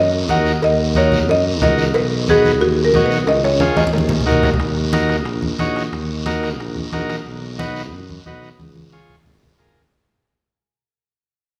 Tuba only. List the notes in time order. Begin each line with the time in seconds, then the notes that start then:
Already playing: F#2
0.29 D#2
0.62 D#2
1.29 F#2
1.61 C#2
1.94 B1
2.61 D#2
2.94 B1
3.27 C#2
3.94 D#2
4.26 D#2
4.60 D#2
5.26 A#1
5.59 A#1
5.92 D#2
6.59 A#1
6.92 A#1
7.26 B1
7.93 F#2
8.26 B1
8.59 C#2
9.26 G#1
9.59 G#1